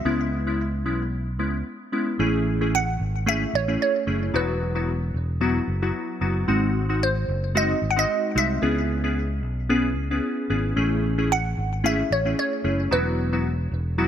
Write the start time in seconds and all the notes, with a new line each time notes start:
Already playing: E5
0.05 C#2 G#3 B3 C#4 E4
0.47 G#3 B3 C#4 E4
0.85 B1 G#3 B3 C#4 E4
1.39 C#2 G#3 B3 C#4 E4
1.92 G#3 B3 C#4 E4
2.19 A1 A3 C#4 E4 G#4
2.61 A3 C#4 E4 G#4
2.75 F#5
3.00 G#1
3.26 A3 C#4 E4 G#4 E5
3.54 A1 C#5
3.68 A3 C#4 E4 G#4
3.82 C#5
4.07 F#1 A3 C#4 E4 G#4
4.34 E1 F#3 B3 E4 F#4 B4
4.75 F#3 B3 E4 F#4
5.14 E1
5.41 F#3 B3 E4 F#4
5.68 F#1
5.82 F#3 B3 E4 F#4
6.21 F#1 F#3 B3 E4 F#4
6.48 G#1 G#3 C4 D#4 F#4
6.89 G#3 C4 D#4 F#4
7.03 C5
7.28 F#1
7.55 G#3 C4 D#4 F#4 D#5
7.82 G#1
7.91 F#5
7.96 G#3 C4 D#4 F#4 D#5
8.35 C2 G#3 C4 D#4 F#4 E5
8.62 C#2 B3 C#4 E4 G#4
9.04 B3 C#4 E4 G#4
9.43 B1
9.69 B3 C#4 E4 G#4
9.96 C#2
10.11 B3 C#4 E4 G#4
10.50 G#1 B3 C#4 E4 G#4
10.76 A1 A3 C#4 E4 G#4
11.18 A3 C#4 E4 G#4
11.32 F#5
11.57 G#1
11.84 A3 C#4 E4 G#4 E5
12.11 A1 C#5
12.25 A3 C#4 E4 G#4
12.39 C#5
12.64 F#1 A3 C#4 E4 G#4
12.91 E1 F#3 B3 E4 F#4 B4
13.32 F#3 B3 E4 F#4
13.71 E1
13.98 F#3 B3 E4 F#4